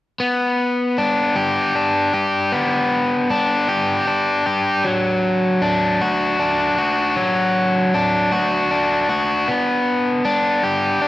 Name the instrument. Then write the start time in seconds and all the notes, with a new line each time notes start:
overdriven electric guitar
0.20 B3
0.98 D4
1.36 G4
1.75 D4
2.14 G4
2.52 B3
3.30 D4
3.68 G4
4.07 D4
4.46 G4
4.85 F#3
5.62 D4
6.01 F#4
6.39 D4
6.78 F#4
7.16 F#3
7.94 D4
8.32 F#4
8.71 D4
9.09 F#4
9.48 B3
10.25 D4
10.64 G4
11.02 D4